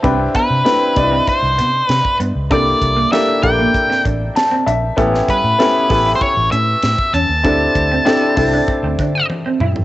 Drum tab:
HH |x-x-x-x-x-x-x-x-|x-x-x-x-x-x-x-x-|x-x-x-o-x-x-x-x-|x-x-x-o-x-x-----|
SD |----o-------o---|----o----o--o---|-o--o-------o---|----o-----------|
T1 |----------------|----------------|----------------|------------o---|
T2 |----------------|----------------|----------------|--------------o-|
FT |----------------|----------------|----------------|---------------o|
BD |o-o---o-o----o--|o-o---o-o-o-----|o-o---o-o----o--|o-o---o-o-o-----|